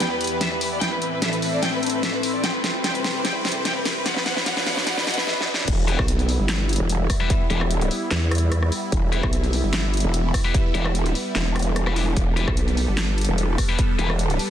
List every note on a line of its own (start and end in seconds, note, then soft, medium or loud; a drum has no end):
0.00 0.80 E2 medium
0.00 2.40 E3 medium
0.00 0.80 B3 medium
0.00 0.81 B3 medium
0.00 0.80 G4 medium
0.00 1.46 G4 medium
0.00 0.78 B4 medium
0.00 4.71 E5 medium
0.00 0.08 G5 medium
0.00 0.81 B5 medium
0.00 snare medium
0.00 closed hi-hat medium
0.00 riser medium
0.11 0.19 B4 medium
0.21 0.29 B4 medium
0.21 closed hi-hat soft
0.24 closed hi-hat medium
0.27 closed hi-hat medium
0.31 0.39 B4 medium
0.41 0.49 E5 medium
0.41 snare medium
0.41 closed hi-hat medium
0.52 0.59 B4 medium
0.61 0.70 B4 medium
0.61 open hi-hat medium
0.72 0.80 D5 medium
0.81 2.42 A2 medium
0.81 4.06 C4 medium
0.81 2.42 C4 medium
0.81 2.42 A4 medium
0.81 2.42 E5 medium
0.81 0.89 G5 loud
0.81 snare medium
0.81 closed hi-hat medium
0.92 1.00 B4 medium
1.02 1.11 B4 medium
1.02 closed hi-hat medium
1.11 3.09 A4 medium
1.11 1.20 B4 medium
1.22 1.30 E5 medium
1.22 snare medium
1.22 closed hi-hat medium
1.33 1.40 B4 medium
1.33 closed hi-hat soft
1.42 1.51 B4 medium
1.42 open hi-hat medium
1.53 1.61 D5 medium
1.53 4.06 C6 medium
1.62 1.70 G5 loud
1.62 snare medium
1.62 closed hi-hat medium
1.73 1.81 B4 medium
1.83 1.92 B4 medium
1.83 closed hi-hat soft
1.86 closed hi-hat medium
1.90 2.01 B4 medium
1.90 closed hi-hat medium
2.03 2.11 E5 medium
2.03 snare medium
2.03 closed hi-hat medium
2.14 2.22 B4 medium
2.23 2.32 B4 medium
2.23 open hi-hat loud
2.34 2.42 D5 medium
2.43 4.04 C3 medium
2.43 4.04 G3 medium
2.43 4.04 E4 medium
2.43 4.04 C5 medium
2.43 2.51 G5 loud
2.43 4.04 G5 medium
2.43 snare medium
2.43 closed hi-hat medium
2.54 2.62 B4 medium
2.62 4.06 G4 medium
2.62 2.73 B4 medium
2.62 snare medium
2.62 closed hi-hat medium
2.75 2.82 B4 medium
2.84 2.92 G5 loud
2.84 snare medium
2.84 closed hi-hat medium
2.95 3.03 B4 medium
2.95 closed hi-hat soft
3.04 3.13 B4 medium
3.04 snare medium
3.04 open hi-hat medium
3.15 3.23 B4 medium
3.25 3.33 G5 loud
3.25 snare medium
3.25 closed hi-hat medium
3.35 3.43 B4 medium
3.45 3.54 B4 medium
3.45 snare medium
3.45 closed hi-hat medium
3.49 closed hi-hat medium
3.52 closed hi-hat medium
3.56 3.63 B4 medium
3.65 3.73 G5 loud
3.65 snare medium
3.65 closed hi-hat medium
3.76 3.84 B4 medium
3.85 3.94 B4 medium
3.85 snare medium
3.85 open hi-hat loud
3.96 4.04 B4 medium
4.06 5.66 B2 medium
4.06 5.66 F#3 medium
4.06 5.27 B3 medium
4.06 5.66 D4 medium
4.06 5.66 B4 medium
4.06 4.14 F#5 loud
4.06 5.66 F#5 medium
4.06 snare medium
4.06 closed hi-hat medium
4.13 5.27 F#4 medium
4.13 4.24 B4 medium
4.13 snare medium
4.26 4.34 F#5 loud
4.26 snare medium
4.26 closed hi-hat medium
4.37 4.45 B4 medium
4.37 snare medium
4.44 5.27 D5 medium
4.44 4.54 F#5 loud
4.44 5.27 B5 medium
4.44 snare loud
4.44 closed hi-hat medium
4.57 4.65 B4 medium
4.57 snare medium
4.57 closed hi-hat soft
4.66 4.75 F#5 loud
4.66 snare loud
4.66 open hi-hat medium
4.77 4.85 B4 medium
4.77 snare medium
4.87 4.95 F#5 loud
4.87 snare loud
4.87 closed hi-hat medium
4.98 5.05 B4 medium
4.98 snare medium
5.07 5.15 F#5 loud
5.07 snare loud
5.07 closed hi-hat medium
5.11 closed hi-hat medium
5.14 closed hi-hat medium
5.18 5.26 B4 medium
5.18 snare medium
5.27 snare medium
5.41 snare medium
5.54 snare loud
5.68 5.97 E1 loud
5.68 14.50 G3 medium
5.68 14.50 B3 medium
5.68 12.15 E4 medium
5.68 kick loud
5.68 closed hi-hat medium
5.68 crash loud
5.88 5.97 E4 loud
5.88 5.97 G4 medium
5.88 5.97 B4 loud
5.88 12.41 E5 medium
5.88 closed hi-hat medium
5.99 6.38 B1 loud
5.99 kick loud
5.99 cross-stick medium
6.08 14.50 G4 medium
6.08 closed hi-hat medium
6.19 closed hi-hat soft
6.29 open hi-hat medium
6.39 6.78 G1 loud
6.49 snare loud
6.49 clap medium
6.49 closed hi-hat medium
6.69 closed hi-hat medium
6.73 closed hi-hat medium
6.76 closed hi-hat medium
6.80 7.08 E1 loud
6.89 closed hi-hat medium
7.10 kick medium
7.10 cross-stick medium
7.10 open hi-hat medium
7.20 7.28 E4 medium
7.20 7.28 G4 medium
7.20 7.28 B4 medium
7.30 kick loud
7.30 closed hi-hat medium
7.50 7.89 E1 loud
7.50 7.59 E4 medium
7.50 7.59 G4 medium
7.50 7.59 B4 medium
7.50 closed hi-hat medium
7.61 cross-stick medium
7.71 closed hi-hat medium
7.81 closed hi-hat soft
7.91 open hi-hat medium
8.11 8.70 E2 loud
8.11 snare loud
8.11 clap medium
8.11 closed hi-hat medium
8.31 cross-stick medium
8.31 closed hi-hat medium
8.35 closed hi-hat medium
8.38 closed hi-hat medium
8.52 cross-stick medium
8.52 closed hi-hat medium
8.62 cross-stick medium
8.72 open hi-hat medium
8.92 9.22 E1 medium
8.92 kick loud
8.92 closed hi-hat medium
9.12 9.21 E4 loud
9.12 9.21 G4 medium
9.12 9.21 B4 loud
9.12 closed hi-hat medium
9.23 9.62 B1 loud
9.23 kick loud
9.23 cross-stick medium
9.33 closed hi-hat medium
9.44 closed hi-hat soft
9.53 open hi-hat medium
9.64 10.03 G1 loud
9.73 snare loud
9.73 clap medium
9.73 closed hi-hat medium
9.94 closed hi-hat soft
9.97 closed hi-hat medium
10.00 closed hi-hat medium
10.04 10.33 E1 loud
10.14 closed hi-hat medium
10.34 kick medium
10.34 cross-stick medium
10.34 open hi-hat medium
10.45 10.52 E4 medium
10.45 10.52 G4 medium
10.45 10.52 B4 medium
10.54 kick loud
10.54 closed hi-hat medium
10.74 11.14 E1 loud
10.74 10.83 E4 medium
10.74 10.83 G4 medium
10.74 10.83 B4 medium
10.74 closed hi-hat soft
10.85 cross-stick medium
10.95 closed hi-hat medium
11.06 closed hi-hat soft
11.15 open hi-hat medium
11.35 12.15 E1 loud
11.35 snare loud
11.35 clap medium
11.35 closed hi-hat medium
11.56 cross-stick medium
11.56 closed hi-hat soft
11.59 closed hi-hat medium
11.62 closed hi-hat medium
11.76 cross-stick medium
11.76 closed hi-hat medium
11.86 11.91 E4 medium
11.86 11.91 G4 medium
11.86 11.91 B4 medium
11.86 cross-stick medium
11.96 12.02 E4 medium
11.96 12.02 G4 medium
11.96 12.02 B4 medium
11.96 open hi-hat medium
12.17 12.46 E1 loud
12.17 14.50 A4 loud
12.17 kick loud
12.17 closed hi-hat medium
12.37 12.45 E4 medium
12.37 12.45 G4 medium
12.37 12.45 B4 loud
12.37 14.50 B4 medium
12.37 closed hi-hat medium
12.48 12.86 B1 loud
12.48 kick loud
12.48 cross-stick medium
12.57 closed hi-hat medium
12.68 closed hi-hat soft
12.77 open hi-hat medium
12.88 13.27 G1 loud
12.97 snare loud
12.97 clap medium
12.97 closed hi-hat medium
13.18 closed hi-hat soft
13.21 closed hi-hat medium
13.25 closed hi-hat medium
13.29 13.57 E1 loud
13.38 closed hi-hat medium
13.58 kick medium
13.58 cross-stick medium
13.58 open hi-hat loud
13.69 13.77 E4 medium
13.69 13.77 G4 medium
13.69 13.77 B4 medium
13.79 kick loud
13.79 closed hi-hat medium
13.99 14.38 E1 loud
13.99 14.07 E4 medium
13.99 14.07 G4 medium
13.99 14.07 B4 medium
13.99 closed hi-hat medium
14.10 cross-stick medium
14.19 closed hi-hat medium
14.30 closed hi-hat soft
14.39 open hi-hat medium